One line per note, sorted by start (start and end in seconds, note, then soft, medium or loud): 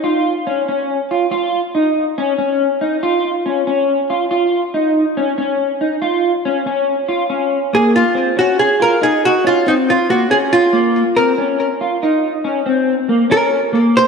0.04 0.33 F4 medium
0.47 0.61 C#4 medium
0.69 0.97 C#4 medium
1.11 1.25 F4 medium
1.31 1.61 F4 medium
1.75 2.04 D#4 medium
2.18 2.32 C#4 medium
2.38 2.67 C#4 medium
2.81 2.96 D#4 medium
3.03 3.32 F4 medium
3.46 3.60 C#4 medium
3.67 3.96 C#4 medium
4.10 4.24 F4 medium
4.31 4.60 F4 medium
4.74 5.03 D#4 medium
5.17 5.31 C#4 medium
5.38 5.67 C#4 medium
5.81 5.95 D#4 medium
6.02 6.31 F4 medium
6.45 6.59 C#4 medium
6.67 6.95 C#4 medium
7.08 7.23 F4 medium
7.30 7.59 C#4 medium
7.73 8.02 A#3 medium
7.73 7.95 G#4 medium
7.96 8.38 F4 medium
8.15 8.29 C4 medium
8.37 8.66 C#4 medium
8.37 8.59 F#4 medium
8.59 8.81 G#4 medium
8.80 8.94 F4 medium
8.80 9.03 A#4 medium
9.01 9.30 D#4 medium
9.01 9.24 G#4 medium
9.25 9.46 F#4 medium
9.44 9.59 C#4 medium
9.44 9.68 F4 medium
9.66 9.95 C4 medium
9.66 9.73 D#4 medium
9.90 10.10 F4 medium
10.10 10.24 A#3 medium
10.10 10.31 F#4 medium
10.30 10.59 C#4 medium
10.30 10.37 G#4 medium
10.53 11.18 F4 medium
10.73 11.02 A#3 medium
11.16 11.31 C4 medium
11.16 11.56 A#4 medium
11.38 11.67 C#4 medium
11.81 11.95 F4 medium
12.03 12.31 D#4 medium
12.44 12.59 C#4 medium
12.66 12.95 C4 medium
13.09 13.23 A#3 medium
13.30 13.59 C#4 medium
13.30 13.71 A#4 medium
13.73 14.02 A#3 medium
13.97 14.07 C5 medium